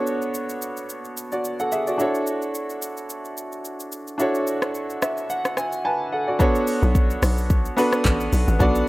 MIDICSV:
0, 0, Header, 1, 4, 480
1, 0, Start_track
1, 0, Tempo, 550459
1, 1741, Time_signature, 4, 2, 24, 8
1, 7748, End_track
2, 0, Start_track
2, 0, Title_t, "Grand piano"
2, 0, Program_c, 0, 0
2, 0, Control_c, 0, 64, 127
2, 0, Note_on_c, 0, 59, 72
2, 0, Note_on_c, 0, 62, 68
2, 0, Note_on_c, 0, 66, 66
2, 0, Note_on_c, 0, 69, 68
2, 0, Note_on_c, 0, 73, 82
2, 997, Note_off_c, 0, 66, 0
2, 1001, Note_off_c, 0, 69, 0
2, 1005, Note_off_c, 0, 73, 0
2, 1152, Note_on_c, 0, 74, 64
2, 1158, Note_on_c, 0, 66, 52
2, 1380, Note_off_c, 0, 74, 0
2, 1383, Note_off_c, 0, 66, 0
2, 1393, Note_on_c, 0, 78, 65
2, 1398, Note_on_c, 0, 69, 58
2, 1495, Note_off_c, 0, 78, 0
2, 1498, Note_off_c, 0, 69, 0
2, 1500, Note_on_c, 0, 76, 67
2, 1505, Note_on_c, 0, 68, 57
2, 1626, Note_off_c, 0, 76, 0
2, 1628, Note_off_c, 0, 68, 0
2, 1632, Note_on_c, 0, 74, 61
2, 1638, Note_on_c, 0, 66, 51
2, 1698, Note_off_c, 0, 59, 0
2, 1702, Note_off_c, 0, 62, 0
2, 1724, Note_on_c, 0, 62, 75
2, 1728, Note_off_c, 0, 66, 0
2, 1732, Note_on_c, 0, 64, 65
2, 1741, Note_on_c, 0, 66, 66
2, 1749, Note_on_c, 0, 69, 70
2, 1750, Control_c, 0, 64, 0
2, 1757, Note_on_c, 0, 73, 81
2, 1860, Note_off_c, 0, 74, 0
2, 1896, Control_c, 0, 64, 127
2, 3617, Note_off_c, 0, 62, 0
2, 3622, Note_off_c, 0, 64, 0
2, 3626, Note_off_c, 0, 66, 0
2, 3630, Note_off_c, 0, 69, 0
2, 3634, Note_off_c, 0, 73, 0
2, 3643, Note_on_c, 0, 62, 76
2, 3652, Note_on_c, 0, 64, 68
2, 3660, Note_on_c, 0, 66, 70
2, 3669, Note_on_c, 0, 69, 66
2, 3677, Note_on_c, 0, 73, 81
2, 4379, Note_on_c, 0, 76, 70
2, 4603, Note_off_c, 0, 76, 0
2, 4619, Note_on_c, 0, 78, 71
2, 4843, Note_off_c, 0, 78, 0
2, 4859, Note_on_c, 0, 80, 67
2, 5072, Note_off_c, 0, 66, 0
2, 5076, Note_off_c, 0, 69, 0
2, 5080, Note_off_c, 0, 73, 0
2, 5083, Note_off_c, 0, 80, 0
2, 5100, Note_on_c, 0, 80, 64
2, 5100, Note_on_c, 0, 81, 75
2, 5105, Note_on_c, 0, 71, 54
2, 5328, Note_off_c, 0, 80, 0
2, 5331, Note_off_c, 0, 71, 0
2, 5340, Note_on_c, 0, 78, 68
2, 5345, Note_on_c, 0, 69, 56
2, 5466, Note_off_c, 0, 78, 0
2, 5468, Note_off_c, 0, 69, 0
2, 5471, Note_on_c, 0, 74, 64
2, 5477, Note_on_c, 0, 66, 51
2, 5537, Note_off_c, 0, 62, 0
2, 5541, Note_off_c, 0, 64, 0
2, 5547, Note_off_c, 0, 81, 0
2, 5567, Note_off_c, 0, 66, 0
2, 5571, Note_on_c, 0, 59, 92
2, 5576, Note_on_c, 0, 62, 81
2, 5580, Note_on_c, 0, 66, 80
2, 5584, Note_on_c, 0, 69, 82
2, 5589, Note_on_c, 0, 73, 96
2, 5593, Control_c, 0, 64, 0
2, 5700, Note_off_c, 0, 74, 0
2, 5767, Control_c, 0, 64, 127
2, 6349, Note_off_c, 0, 59, 0
2, 6351, Note_off_c, 0, 62, 0
2, 6353, Note_off_c, 0, 66, 0
2, 6355, Note_off_c, 0, 69, 0
2, 6357, Note_off_c, 0, 73, 0
2, 6772, Note_on_c, 0, 59, 93
2, 6776, Note_on_c, 0, 62, 86
2, 6780, Note_on_c, 0, 66, 85
2, 6785, Note_on_c, 0, 69, 82
2, 6789, Note_on_c, 0, 71, 98
2, 7362, Note_off_c, 0, 59, 0
2, 7364, Note_off_c, 0, 62, 0
2, 7366, Note_off_c, 0, 66, 0
2, 7368, Note_off_c, 0, 69, 0
2, 7370, Note_off_c, 0, 71, 0
2, 7492, Note_on_c, 0, 59, 88
2, 7496, Note_on_c, 0, 62, 80
2, 7500, Note_on_c, 0, 66, 85
2, 7505, Note_on_c, 0, 69, 82
2, 7509, Note_on_c, 0, 74, 98
2, 7748, Note_off_c, 0, 59, 0
2, 7748, Note_off_c, 0, 62, 0
2, 7748, Note_off_c, 0, 66, 0
2, 7748, Note_off_c, 0, 69, 0
2, 7748, Note_off_c, 0, 74, 0
2, 7748, End_track
3, 0, Start_track
3, 0, Title_t, "Log drum bass"
3, 0, Program_c, 1, 39
3, 5952, Note_on_c, 1, 35, 100
3, 6249, Note_off_c, 1, 35, 0
3, 6300, Note_on_c, 1, 35, 102
3, 6709, Note_off_c, 1, 35, 0
3, 7020, Note_on_c, 1, 33, 92
3, 7225, Note_off_c, 1, 33, 0
3, 7260, Note_on_c, 1, 35, 94
3, 7373, Note_off_c, 1, 35, 0
3, 7393, Note_on_c, 1, 33, 93
3, 7485, Note_off_c, 1, 33, 0
3, 7501, Note_on_c, 1, 35, 108
3, 7705, Note_off_c, 1, 35, 0
3, 7748, End_track
4, 0, Start_track
4, 0, Title_t, "Drums"
4, 58, Note_on_c, 9, 82, 82
4, 145, Note_off_c, 9, 82, 0
4, 190, Note_on_c, 9, 82, 47
4, 278, Note_off_c, 9, 82, 0
4, 299, Note_on_c, 9, 82, 75
4, 386, Note_off_c, 9, 82, 0
4, 431, Note_on_c, 9, 82, 52
4, 518, Note_off_c, 9, 82, 0
4, 539, Note_on_c, 9, 82, 97
4, 626, Note_off_c, 9, 82, 0
4, 671, Note_on_c, 9, 82, 49
4, 759, Note_off_c, 9, 82, 0
4, 780, Note_on_c, 9, 82, 74
4, 867, Note_off_c, 9, 82, 0
4, 912, Note_on_c, 9, 82, 45
4, 999, Note_off_c, 9, 82, 0
4, 1021, Note_on_c, 9, 82, 89
4, 1108, Note_off_c, 9, 82, 0
4, 1151, Note_on_c, 9, 82, 51
4, 1239, Note_off_c, 9, 82, 0
4, 1261, Note_on_c, 9, 82, 74
4, 1348, Note_off_c, 9, 82, 0
4, 1392, Note_on_c, 9, 82, 55
4, 1479, Note_off_c, 9, 82, 0
4, 1499, Note_on_c, 9, 82, 84
4, 1586, Note_off_c, 9, 82, 0
4, 1633, Note_on_c, 9, 82, 48
4, 1720, Note_off_c, 9, 82, 0
4, 1740, Note_on_c, 9, 82, 70
4, 1827, Note_off_c, 9, 82, 0
4, 1872, Note_on_c, 9, 82, 50
4, 1959, Note_off_c, 9, 82, 0
4, 1978, Note_on_c, 9, 82, 82
4, 2065, Note_off_c, 9, 82, 0
4, 2111, Note_on_c, 9, 82, 46
4, 2198, Note_off_c, 9, 82, 0
4, 2220, Note_on_c, 9, 82, 73
4, 2307, Note_off_c, 9, 82, 0
4, 2352, Note_on_c, 9, 82, 52
4, 2439, Note_off_c, 9, 82, 0
4, 2459, Note_on_c, 9, 82, 95
4, 2546, Note_off_c, 9, 82, 0
4, 2592, Note_on_c, 9, 82, 52
4, 2679, Note_off_c, 9, 82, 0
4, 2700, Note_on_c, 9, 82, 75
4, 2787, Note_off_c, 9, 82, 0
4, 2833, Note_on_c, 9, 82, 46
4, 2920, Note_off_c, 9, 82, 0
4, 2941, Note_on_c, 9, 82, 85
4, 3028, Note_off_c, 9, 82, 0
4, 3071, Note_on_c, 9, 82, 47
4, 3158, Note_off_c, 9, 82, 0
4, 3180, Note_on_c, 9, 82, 73
4, 3267, Note_off_c, 9, 82, 0
4, 3312, Note_on_c, 9, 82, 59
4, 3399, Note_off_c, 9, 82, 0
4, 3419, Note_on_c, 9, 82, 88
4, 3506, Note_off_c, 9, 82, 0
4, 3553, Note_on_c, 9, 82, 49
4, 3640, Note_off_c, 9, 82, 0
4, 3659, Note_on_c, 9, 82, 72
4, 3746, Note_off_c, 9, 82, 0
4, 3791, Note_on_c, 9, 82, 50
4, 3879, Note_off_c, 9, 82, 0
4, 3898, Note_on_c, 9, 82, 82
4, 3985, Note_off_c, 9, 82, 0
4, 4030, Note_on_c, 9, 37, 82
4, 4030, Note_on_c, 9, 82, 47
4, 4117, Note_off_c, 9, 37, 0
4, 4118, Note_off_c, 9, 82, 0
4, 4139, Note_on_c, 9, 82, 69
4, 4226, Note_off_c, 9, 82, 0
4, 4272, Note_on_c, 9, 82, 48
4, 4359, Note_off_c, 9, 82, 0
4, 4379, Note_on_c, 9, 82, 99
4, 4380, Note_on_c, 9, 37, 96
4, 4466, Note_off_c, 9, 82, 0
4, 4467, Note_off_c, 9, 37, 0
4, 4512, Note_on_c, 9, 82, 52
4, 4599, Note_off_c, 9, 82, 0
4, 4620, Note_on_c, 9, 82, 73
4, 4707, Note_off_c, 9, 82, 0
4, 4754, Note_on_c, 9, 37, 89
4, 4754, Note_on_c, 9, 82, 44
4, 4841, Note_off_c, 9, 37, 0
4, 4841, Note_off_c, 9, 82, 0
4, 4857, Note_on_c, 9, 37, 84
4, 4861, Note_on_c, 9, 82, 86
4, 4944, Note_off_c, 9, 37, 0
4, 4949, Note_off_c, 9, 82, 0
4, 4992, Note_on_c, 9, 82, 49
4, 5079, Note_off_c, 9, 82, 0
4, 5580, Note_on_c, 9, 36, 112
4, 5580, Note_on_c, 9, 82, 77
4, 5667, Note_off_c, 9, 36, 0
4, 5667, Note_off_c, 9, 82, 0
4, 5713, Note_on_c, 9, 82, 55
4, 5800, Note_off_c, 9, 82, 0
4, 5819, Note_on_c, 9, 46, 52
4, 5819, Note_on_c, 9, 82, 89
4, 5906, Note_off_c, 9, 46, 0
4, 5906, Note_off_c, 9, 82, 0
4, 5952, Note_on_c, 9, 82, 52
4, 6039, Note_off_c, 9, 82, 0
4, 6060, Note_on_c, 9, 36, 93
4, 6061, Note_on_c, 9, 82, 77
4, 6148, Note_off_c, 9, 36, 0
4, 6148, Note_off_c, 9, 82, 0
4, 6194, Note_on_c, 9, 82, 56
4, 6281, Note_off_c, 9, 82, 0
4, 6301, Note_on_c, 9, 46, 63
4, 6301, Note_on_c, 9, 82, 110
4, 6302, Note_on_c, 9, 37, 99
4, 6388, Note_off_c, 9, 46, 0
4, 6388, Note_off_c, 9, 82, 0
4, 6389, Note_off_c, 9, 37, 0
4, 6433, Note_on_c, 9, 82, 57
4, 6521, Note_off_c, 9, 82, 0
4, 6541, Note_on_c, 9, 36, 120
4, 6541, Note_on_c, 9, 82, 82
4, 6628, Note_off_c, 9, 82, 0
4, 6629, Note_off_c, 9, 36, 0
4, 6675, Note_on_c, 9, 82, 49
4, 6762, Note_off_c, 9, 82, 0
4, 6783, Note_on_c, 9, 46, 54
4, 6783, Note_on_c, 9, 82, 90
4, 6870, Note_off_c, 9, 46, 0
4, 6870, Note_off_c, 9, 82, 0
4, 6911, Note_on_c, 9, 37, 100
4, 6913, Note_on_c, 9, 82, 54
4, 6998, Note_off_c, 9, 37, 0
4, 7000, Note_off_c, 9, 82, 0
4, 7020, Note_on_c, 9, 36, 90
4, 7021, Note_on_c, 9, 39, 100
4, 7022, Note_on_c, 9, 82, 80
4, 7107, Note_off_c, 9, 36, 0
4, 7108, Note_off_c, 9, 39, 0
4, 7109, Note_off_c, 9, 82, 0
4, 7154, Note_on_c, 9, 82, 61
4, 7241, Note_off_c, 9, 82, 0
4, 7260, Note_on_c, 9, 46, 54
4, 7260, Note_on_c, 9, 82, 95
4, 7347, Note_off_c, 9, 46, 0
4, 7347, Note_off_c, 9, 82, 0
4, 7395, Note_on_c, 9, 82, 54
4, 7482, Note_off_c, 9, 82, 0
4, 7501, Note_on_c, 9, 36, 112
4, 7501, Note_on_c, 9, 82, 77
4, 7588, Note_off_c, 9, 36, 0
4, 7588, Note_off_c, 9, 82, 0
4, 7633, Note_on_c, 9, 82, 57
4, 7720, Note_off_c, 9, 82, 0
4, 7748, End_track
0, 0, End_of_file